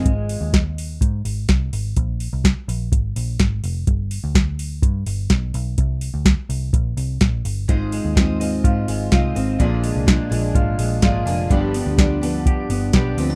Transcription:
<<
  \new Staff \with { instrumentName = "Twelve-string acoustic guitar" } { \time 4/4 \key aes \lydian \tempo 4 = 126 r1 | r1 | r1 | r1 |
<aes c' f' c'' ees''>4 <c' f' c'' ees''>8 <f' c'' ees''>4. <c' f' c'' ees''>8 <f' c'' ees''>8 | <bes, d f bes d' aes'>4 <f bes d' aes'>8 <f bes d' aes'>4. <f bes d' aes'>8 <f bes d' aes'>8 | <g, d f b d' g'>4 <f b d' g'>8 <f b d' g'>4. <f b d' g'>8 <f b d' g'>8 | }
  \new Staff \with { instrumentName = "Clean electric guitar" } { \time 4/4 \key aes \lydian r1 | r1 | r1 | r1 |
aes,8 aes8 c'8 aes8 f'8 aes8 f'8 c'8 | bes,8 aes8 d'8 aes8 f'8 aes8 f'8 d'8 | g,8 b8 d'8 b8 g'8 b8 g'8 c'16 d'16 | }
  \new Staff \with { instrumentName = "Picked electric bass" } { \clef bass \time 4/4 \key aes \lydian aes,,8. ees,4~ ees,16 aes,8 aes,,8 c,8 aes,,8 | bes,,8. c,8 r16 bes,,8 aes,,8 bes,,8 aes,,8 f,,8 | g,,8. d,4~ d,16 g,8 g,,8 b,,8 b,,8 | c,8. d,8 r16 c,8 bes,,8 c,8 bes,,8 g,,8 |
aes,,8. ees,4~ ees,16 aes,8 aes,,8 c,8 aes,,8 | bes,,8. c,8 r16 bes,,8 aes,,8 bes,,8 aes,,8 f,,8 | g,,8. d,4. r16 g,,8 b,,8 d,8 | }
  \new DrumStaff \with { instrumentName = "Drums" } \drummode { \time 4/4 <hh bd>8 hho8 <hh bd sn>8 hho8 <hh bd>8 hho8 <hh bd sn>8 hho8 | <hh bd>8 hho8 <hh bd sn>8 hho8 <hh bd>8 hho8 <hh bd sn>8 hho8 | <hh bd>8 hho8 <hh bd sn>8 hho8 <hh bd>8 hho8 <hh bd sn>8 hho8 | <hh bd>8 hho8 <hh bd sn>8 hho8 <hh bd>8 hho8 <hh bd sn>8 hho8 |
<hh bd>8 hho8 <hh bd sn>8 hho8 <hh bd>8 hho8 <hh bd sn>8 hho8 | <hh bd>8 hho8 <hh bd sn>8 hho8 <hh bd>8 hho8 <hh bd sn>8 hho8 | <hh bd>8 hho8 <hh bd sn>8 hho8 <hh bd>8 hho8 <hh bd sn>8 hho8 | }
>>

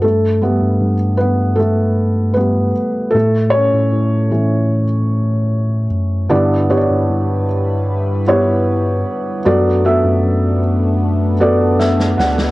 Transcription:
<<
  \new Staff \with { instrumentName = "Felt piano" } { \time 4/4 \key g \lydian \tempo 4 = 77 << { <a a'>4. <b b'>8 <a a'>4 b'4 | <a a'>8 <cis' cis''>2. r8 | r1 | r2. e''8 fis''8 | } \\ { r1 | r1 | <b e' g' d''>8 <b e' g' cis'' d''>2 <b e' g' cis''>4. | <b fis' a' d''>8 <b fis' a' e''>2 <b fis' a' d''>4. | } >> }
  \new Staff \with { instrumentName = "Felt piano" } { \clef bass \time 4/4 \key g \lydian r8 <g a b>8 r2 <g a b>8 r8 | r4. <e a cis'>8 r2 | <g, d>4. r2 r8 | fis4. r2 r8 | }
  \new Staff \with { instrumentName = "Analog synth pad" } { \time 4/4 \key g \lydian r1 | r1 | <g e' b'>1 | <a b d'>1 | }
  \new Staff \with { instrumentName = "Tine electric piano" } { \clef bass \time 4/4 \key g \lydian g,8. g,16 g,2~ g,8 r8 | a,8. a,16 a,2~ a,8 fis,8 | g,8. g,16 g,2~ g,8 r8 | fis,8. fis,16 fis,2~ fis,8 d,8 | }
  \new DrumStaff \with { instrumentName = "Drums" } \drummode { \time 4/4 r4 r4 r4 r4 | r4 r4 r4 r4 | r4 r4 r4 r4 | r4 r4 r4 sn16 sn16 sn16 sn16 | }
>>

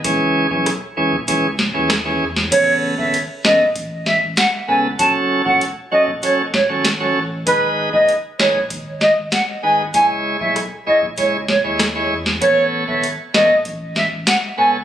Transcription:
<<
  \new Staff \with { instrumentName = "Flute" } { \time 4/4 \key a \lydian \tempo 4 = 97 r1 | cis''8 r16 e''8 r16 dis''8 r8 e''16 r16 fis''16 r16 gis''16 r16 | a''16 r8 fis''16 r8 dis''16 r16 cis''16 r16 cis''16 r4 r16 | b'8 r16 dis''8 r16 cis''8 r8 dis''16 r16 fis''16 r16 gis''16 r16 |
gis''16 r8 e''16 r8 dis''16 r16 cis''16 r16 cis''16 r4 r16 | cis''8 r16 e''8 r16 dis''8 r8 e''16 r16 fis''16 r16 gis''16 r16 | }
  \new Staff \with { instrumentName = "Tonewheel organ" } { \time 4/4 \key a \lydian <e cis' gis'>8. <e cis' gis'>16 r8 <e cis' gis'>16 r16 <e cis' gis'>16 r8 <e cis' gis'>16 r16 <e cis' gis'>16 r8 | <cis b a'>8. <cis b a'>16 r8 <cis b a'>16 r4. r16 <cis b a'>16 r16 | <fis cis' a'>8. <fis cis' a'>16 r8 <fis cis' a'>16 r16 <fis cis' a'>16 r8 <fis cis' a'>16 r16 <fis cis' a'>16 r8 | <gis dis' b'>8. <gis dis' b'>16 r8 <gis dis' b'>16 r4. r16 <gis dis' b'>16 r16 |
<gis e' cis''>8. <gis e' cis''>16 r8 <gis e' cis''>16 r16 <gis e' cis''>16 r8 <gis e' cis''>16 r16 <gis e' cis''>16 r8 | <b a' cis''>8. <b a' cis''>16 r8 <b a' cis''>16 r4. r16 <b a' cis''>16 r16 | }
  \new Staff \with { instrumentName = "Sub bass" } { \clef bass \time 4/4 \key a \lydian cis,8. b,,8 r16 cis,16 r16 cis,8. dis,8. e,8 | a,,8. gis,,8 r16 a,,16 r16 a,,8. a,,16 r8 cis,8 | fis,,8. e,,8 r16 fis,,16 r16 fis,,8. gis,,8. a,,8 | gis,,8. fis,,8 r16 gis,,16 r16 gis,,8. gis,,16 r8 gis,,8 |
cis,8. b,,8 r16 cis,16 r16 cis,8. dis,8. e,8 | a,,8. gis,,8 r16 a,,16 r16 a,,8. a,,16 r8 cis,8 | }
  \new DrumStaff \with { instrumentName = "Drums" } \drummode { \time 4/4 <hh bd>8. bd16 <hh ss>8. bd16 <hh bd>8 <bd sn>8 <hh ss sn>8. sn16 | <cymc hh bd>8. bd16 hh8 sn16 bd16 <hh bd>8 sn8 <hh sn>4 | <hh bd>8. bd16 hh8. bd16 hh8 <bd sn>8 <hh sn>4 | <hh bd>8. bd16 hh8 sn16 bd16 <hh bd>8 sn8 <hh sn>4 |
<hh bd>8. bd16 <hh ss>8. bd16 <hh bd>8 <bd sn>8 <hh ss sn>8. sn16 | <hh bd>8. bd16 hh8 sn16 bd16 <hh bd>8 sn8 <hh sn>4 | }
>>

